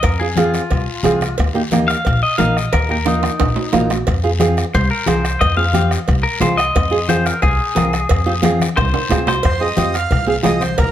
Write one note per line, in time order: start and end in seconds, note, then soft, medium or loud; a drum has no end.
0.03 0.57 F2 loud
0.03 0.20 A#4 medium
0.03 bombo low medium
0.03 bombo rim medium
0.03 cowbell loud
0.03 long guiro medium
0.20 0.26 C4 medium
0.20 0.26 F4 medium
0.20 0.37 G#4 medium
0.20 0.27 G#4 medium
0.36 0.61 C4 medium
0.36 1.35 F4 medium
0.36 0.61 F4 medium
0.36 0.61 G#4 medium
0.36 bombo rim medium
0.36 cowbell medium
0.36 high conga medium
0.36 short guiro medium
0.54 bombo rim medium
0.54 short guiro medium
0.70 0.85 C2 loud
0.70 bombo low medium
0.70 bombo rim medium
0.70 cowbell medium
0.70 high conga soft
0.70 long guiro medium
1.03 1.32 C2 medium
1.03 1.22 C4 medium
1.03 1.22 F4 medium
1.03 1.22 G#4 loud
1.03 bombo rim medium
1.03 cowbell medium
1.03 high conga medium
1.03 low conga medium
1.03 short guiro medium
1.21 bombo rim medium
1.21 low conga medium
1.21 short guiro medium
1.38 1.93 D#2 loud
1.38 bombo low medium
1.38 bombo rim medium
1.38 cowbell medium
1.38 long guiro medium
1.54 1.61 A#3 medium
1.54 1.61 D#4 medium
1.54 1.61 G4 medium
1.71 1.96 A#3 medium
1.71 1.96 D#4 medium
1.71 1.96 G4 loud
1.71 bombo rim medium
1.71 cowbell medium
1.71 high conga loud
1.71 short guiro medium
1.88 2.21 F5 loud
1.88 bombo rim medium
1.88 short guiro medium
2.05 2.20 A#1 loud
2.05 bombo low medium
2.05 bombo rim medium
2.05 cowbell medium
2.05 high conga soft
2.05 long guiro medium
2.23 2.38 D#5 medium
2.38 2.66 A#1 medium
2.38 2.56 A#3 medium
2.38 2.56 D#4 medium
2.38 2.57 A#4 medium
2.38 2.57 F5 medium
2.38 bombo rim medium
2.38 cowbell medium
2.38 high conga medium
2.38 low timbale medium
2.38 short guiro medium
2.57 2.73 D#5 medium
2.57 bombo rim medium
2.57 short guiro medium
2.73 3.27 D#2 loud
2.73 2.89 A#4 medium
2.73 bombo low medium
2.73 bombo rim medium
2.73 cowbell loud
2.73 high conga soft
2.73 long guiro medium
2.89 2.95 A#3 medium
2.89 2.95 D#4 medium
2.89 2.96 G4 medium
2.89 3.07 A#4 medium
3.05 3.30 A#3 medium
3.05 3.30 D#4 medium
3.05 4.05 D#4 medium
3.05 3.30 F4 medium
3.05 bombo rim medium
3.05 cowbell medium
3.05 high conga medium
3.05 high timbale medium
3.05 short guiro medium
3.23 bombo rim medium
3.23 high timbale medium
3.23 short guiro medium
3.40 3.54 A#1 medium
3.40 bombo low medium
3.40 bombo rim medium
3.40 cowbell medium
3.40 high timbale medium
3.40 long guiro medium
3.56 low timbale medium
3.73 4.01 A#1 medium
3.73 3.91 A#3 medium
3.73 3.91 D#4 medium
3.73 3.91 F4 loud
3.73 bombo rim medium
3.73 cowbell medium
3.73 high conga medium
3.73 low conga medium
3.73 low timbale medium
3.73 short guiro medium
3.90 bombo rim medium
3.90 low timbale medium
3.90 short guiro medium
4.07 4.61 F2 loud
4.07 bombo low medium
4.07 bombo rim medium
4.07 cowbell loud
4.07 long guiro medium
4.23 4.30 C4 medium
4.23 4.30 F4 medium
4.23 4.30 G#4 medium
4.39 4.64 C4 medium
4.39 4.64 F4 medium
4.39 4.64 G#4 medium
4.39 bombo rim medium
4.39 cowbell medium
4.39 high conga medium
4.39 short guiro medium
4.57 bombo rim medium
4.57 short guiro medium
4.73 4.88 C2 loud
4.73 4.90 C5 medium
4.73 bombo low medium
4.73 bombo rim medium
4.73 cowbell medium
4.73 high conga soft
4.73 long guiro medium
4.91 5.07 A#4 medium
5.06 5.34 C2 medium
5.06 5.25 C4 medium
5.06 5.25 F4 medium
5.06 5.25 G#4 medium
5.06 5.40 C5 medium
5.06 bombo rim medium
5.06 cowbell medium
5.06 high conga medium
5.06 short guiro medium
5.25 bombo rim medium
5.25 short guiro medium
5.40 5.95 F2 loud
5.40 5.57 D#5 medium
5.40 bombo low medium
5.40 bombo rim medium
5.40 cowbell medium
5.40 high conga soft
5.40 long guiro medium
5.57 5.63 C4 medium
5.57 5.64 F4 medium
5.57 5.64 G#4 medium
5.57 5.90 F5 medium
5.73 5.98 C4 medium
5.73 5.98 F4 medium
5.73 5.98 G4 medium
5.73 bombo rim medium
5.73 cowbell medium
5.73 high conga medium
5.73 short guiro medium
5.91 bombo rim medium
5.91 short guiro medium
6.08 6.22 C2 loud
6.08 bombo low medium
6.08 bombo rim medium
6.08 cowbell medium
6.08 high conga soft
6.08 long guiro medium
6.23 6.41 A#4 medium
6.40 6.69 C2 medium
6.40 6.59 C4 medium
6.40 6.59 F4 medium
6.40 6.59 G#4 medium
6.40 6.58 C5 medium
6.40 bombo rim medium
6.40 cowbell medium
6.40 high conga medium
6.40 low conga medium
6.40 short guiro medium
6.57 7.07 D#5 loud
6.57 bombo rim medium
6.57 short guiro medium
6.75 7.30 F2 loud
6.75 bombo low medium
6.75 bombo rim medium
6.75 cowbell loud
6.75 high conga soft
6.75 long guiro medium
6.90 6.97 C4 medium
6.90 6.98 F4 medium
6.90 6.98 G#4 medium
7.08 7.32 C4 medium
7.08 7.33 F4 medium
7.08 7.33 G#4 medium
7.08 7.26 C5 medium
7.08 bombo rim medium
7.08 cowbell medium
7.08 high conga medium
7.08 short guiro medium
7.26 7.42 A#4 medium
7.26 bombo rim medium
7.26 short guiro medium
7.42 7.57 C2 loud
7.42 8.40 G#4 loud
7.42 bombo low medium
7.42 bombo rim medium
7.42 cowbell medium
7.42 long guiro medium
7.75 8.03 C2 medium
7.75 7.93 C4 medium
7.75 7.94 F4 medium
7.75 7.94 A#4 medium
7.75 bombo rim medium
7.75 cowbell medium
7.75 high conga medium
7.75 short guiro medium
7.93 bombo rim medium
7.93 short guiro medium
8.09 8.64 F2 loud
8.09 bombo low medium
8.09 bombo rim medium
8.09 cowbell loud
8.09 high conga soft
8.09 long guiro medium
8.26 8.32 C4 medium
8.26 8.32 F4 medium
8.26 8.33 G4 medium
8.42 8.66 C4 medium
8.42 8.67 F4 medium
8.42 8.67 G#4 loud
8.42 bombo rim medium
8.42 cowbell medium
8.42 high conga loud
8.42 short guiro medium
8.60 bombo rim medium
8.60 high conga medium
8.60 short guiro medium
8.77 8.91 C2 loud
8.77 9.26 C5 medium
8.77 bombo low medium
8.77 bombo rim medium
8.77 cowbell medium
8.77 high timbale medium
8.77 long guiro medium
8.94 low conga medium
8.94 high timbale medium
9.09 9.38 C2 medium
9.09 9.28 C4 medium
9.09 9.28 F4 medium
9.09 9.28 G#4 medium
9.09 bombo low medium
9.09 bombo rim medium
9.09 cowbell medium
9.09 low conga medium
9.09 low timbale medium
9.09 short guiro medium
9.27 9.44 C5 loud
9.27 bombo rim medium
9.27 low conga medium
9.27 low timbale medium
9.27 short guiro medium
9.43 9.71 F2 loud
9.43 9.62 C5 loud
9.43 bombo low medium
9.43 bombo rim medium
9.43 cowbell loud
9.43 high conga soft
9.43 long guiro medium
9.60 9.66 C4 medium
9.60 9.66 F4 medium
9.60 9.67 G#4 medium
9.60 9.95 D#5 loud
9.76 10.04 F2 medium
9.76 9.95 C4 medium
9.76 9.95 F4 medium
9.76 9.95 G4 medium
9.76 bombo rim medium
9.76 cowbell medium
9.76 high conga loud
9.76 short guiro medium
9.94 10.26 F5 loud
9.94 bombo rim medium
9.94 short guiro medium
10.11 10.38 C2 loud
10.11 bombo low medium
10.11 bombo rim medium
10.11 cowbell medium
10.11 high conga soft
10.11 low conga loud
10.11 long guiro medium
10.27 10.33 C4 medium
10.27 10.33 F4 medium
10.27 10.33 G#4 medium
10.27 10.36 F5 loud
10.43 10.71 C2 medium
10.43 10.61 C4 medium
10.43 10.61 F4 medium
10.43 10.62 G#4 medium
10.43 10.62 D#5 loud
10.43 bombo rim medium
10.43 cowbell medium
10.43 high conga medium
10.43 low timbale medium
10.43 short guiro medium
10.61 10.77 C5 medium
10.61 bombo rim medium
10.61 high conga medium
10.61 short guiro medium
10.78 10.92 C2 loud
10.78 10.92 A#4 medium
10.78 bombo low medium
10.78 bombo rim medium
10.78 cowbell loud
10.78 high conga soft
10.78 low conga medium
10.78 long guiro medium